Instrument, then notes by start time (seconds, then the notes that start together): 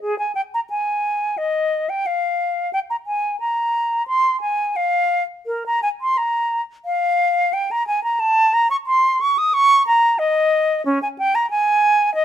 flute
0.01 G#4
0.19 G#5
0.35 G5
0.54 A#5
0.70 G#5
1.38 D#5
1.89 G5
2.06 F5
2.73 G5
2.90 A#5
3.07 G#5
3.40 A#5
4.08 C6
4.41 G#5
4.76 F5
5.46 A#4
5.66 A#5
5.83 G#5
6.01 C6
6.18 A#5
6.85 F5
7.53 G5
7.71 A#5
7.87 G#5
8.04 A#5
8.20 A5
8.54 A#5
8.71 C#6
8.87 C6
9.21 C#6
9.38 D#6
9.54 C#6
9.87 A#5
10.19 D#5
10.86 C#4
11.02 G#5
11.19 G5
11.35 A#5
11.50 G#5
12.15 D#5